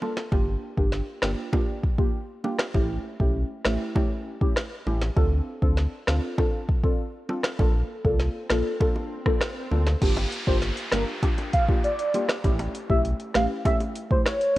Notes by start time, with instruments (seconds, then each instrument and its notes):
0.01 synth stab A#3 D4 F4 A4, low bongo
0.17 snare, high bongo
0.32 sub bass G1, synth stab A#3 D4 F4 G4, kick, high bongo
0.77 sub bass G1, synth stab A#3 D4 F4 G4, kick
0.92 snare
1.22 sub bass G1, synth stab A#3 D4 F4 G4, cross-stick, snare, high bongo
1.53 synth stab A#3 D4 F4 G4, kick, high bongo
1.84 kick
1.98 synth stab A#3 D4 F4 G4, kick
2.44 synth stab A#3 D4 F4 G4, low bongo
2.59 cross-stick, snare, high bongo
2.74 sub bass A1, synth stab A3 C#4 E4 G4, kick, high bongo
3.20 sub bass B1, synth stab A3 C#4 E4 G4, kick
3.65 sub bass A1, synth stab A3 C#4 E4 G4, cross-stick, snare, high bongo
3.95 synth stab A3 C#4 E4 G4, kick, high bongo
4.41 synth stab A3 C#4 E4 G4, kick
4.56 cross-stick, snare
4.86 sub bass A1, synth stab A3 C#4 E4 G4, low bongo
5.02 snare, high bongo
5.17 sub bass D2, synth stab C4 D4 F4 A4, kick, high bongo
5.62 sub bass D2, synth stab C4 D4 F4 A4, kick
5.77 snare
6.07 sub bass D2, synth stab C4 D4 F4 A4, cross-stick, snare, high bongo
6.38 synth stab C4 D4 F4 A4, kick, high bongo
6.69 kick
6.83 synth stab C4 D4 F4 A4, kick
7.29 synth stab C4 D4 F4 A4, low bongo
7.44 cross-stick, snare, high bongo
7.59 sub bass A#1, synth stab A#3 D4 F4 A4, kick, swell, high bongo
8.05 sub bass C2, synth stab A#3 D4 F4 A4, kick
8.20 snare
8.50 sub bass A#1, synth stab A#3 D4 F4 A4, cross-stick, snare, high bongo
8.80 synth stab A#3 D4 F4 A4, kick, high bongo
8.96 high bongo
9.26 synth stab A#3 D4 F4 A4, kick, cross-stick
9.41 cross-stick, snare
9.71 sub bass D2, synth stab A#3 D4 F4 A4, low bongo
9.87 snare, high bongo
10.02 sub bass G1, synth stab A#3 D4 F4 G4, kick, closed hi-hat, crash, high bongo, downlifter
10.17 closed hi-hat, high bongo
10.32 closed hi-hat
10.47 sub bass G1, synth stab A#3 D4 F4 G4, soft synth lead C5, kick
10.62 snare, closed hi-hat
10.77 closed hi-hat
10.92 sub bass G1, synth stab A#3 D4 F4 G4, soft synth lead A#4, cross-stick, snare, closed hi-hat, high bongo, low bongo
11.23 synth stab A#3 D4 F4 G4, kick, closed hi-hat, high bongo
11.38 closed hi-hat, high bongo
11.53 soft synth lead F5, kick, closed hi-hat
11.68 synth stab A#3 D4 F4 G4, kick
11.84 soft synth lead D5, closed hi-hat
11.99 closed hi-hat
12.14 synth stab A#3 D4 F4 G4, closed hi-hat, low bongo
12.28 cross-stick, snare, high bongo
12.44 sub bass A1, synth stab A3 C#4 E4 G4, kick, closed hi-hat, high bongo
12.59 closed hi-hat, high bongo
12.75 closed hi-hat
12.89 sub bass B1, synth stab A3 C#4 E4 G4, soft synth lead E5, kick
13.05 closed hi-hat
13.20 closed hi-hat
13.34 sub bass A1, synth stab A3 C#4 E4 G4, soft synth lead F5, cross-stick, snare, closed hi-hat, high bongo, low bongo
13.65 synth stab A3 C#4 E4 G4, soft synth lead E5, kick, closed hi-hat, high bongo
13.80 closed hi-hat, high bongo
13.95 closed hi-hat
14.11 synth stab A3 C#4 E4 G4, soft synth lead C5, kick
14.26 soft synth lead C#5, cross-stick, snare, closed hi-hat
14.41 closed hi-hat